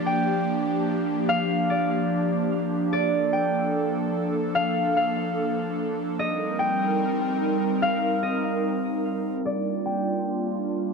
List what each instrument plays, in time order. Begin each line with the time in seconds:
Already playing: analog synth pad F3 A#3 D4 G4, harp D5
0.06 harp G5
1.29 harp F5
1.70 harp D5
2.92 analog synth pad A4, harp D5
3.33 harp G5
4.55 harp F5
4.97 harp F5
6.19 analog synth pad G3 C4 D#4 A#4, harp D#5
6.59 harp G5
7.82 harp F5
8.23 harp D#5
9.45 analog synth pad G3 A#3 D4 F4, harp D5
9.86 harp G5